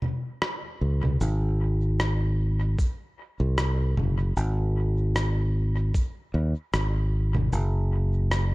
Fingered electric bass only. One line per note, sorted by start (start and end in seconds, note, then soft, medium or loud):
0.81 1.16 C#2 medium
1.21 2.75 G#1 loud
3.40 3.94 C2 medium
3.97 4.32 F#1 medium
4.37 5.91 G#1 medium
6.34 6.53 D#2 medium
6.74 7.49 G#1 medium
7.52 8.55 F#1 medium